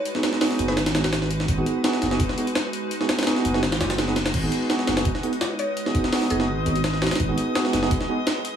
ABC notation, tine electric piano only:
X:1
M:4/4
L:1/16
Q:1/4=168
K:G#m
V:1 name="Tine electric piano"
z [B,DFG]3 [B,DFG]3 [B,DFG] z2 [B,DFG] z4 z | z [B,DFG]3 [B,DFG]3 [B,DFG] z2 [B,DFG] z4 z | z [B,DFG]3 [B,DFG]3 [B,DFG] z4 [B,DFG] [B,DFG] z2 | z [B,DFG]3 [B,DFG]3 [B,DFG] z2 [B,DFG] z4 z |
z [B,DFG]3 [B,DFG]3 [B,DFG] z2 [B,DFG] z4 z | z [B,DFG]3 [B,DFG]3 [B,DFG] z2 [B,DFG] z4 z |]